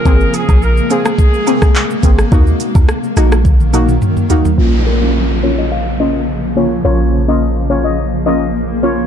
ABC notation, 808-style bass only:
X:1
M:4/4
L:1/16
Q:1/4=106
K:Bbm
V:1 name="808-style bass" clef=bass
A,,,2 z B,,,3 z8 A,,,2 | E,,2 z E,, z2 B,,,6 z4 | B,,,16 | B,,,16 |]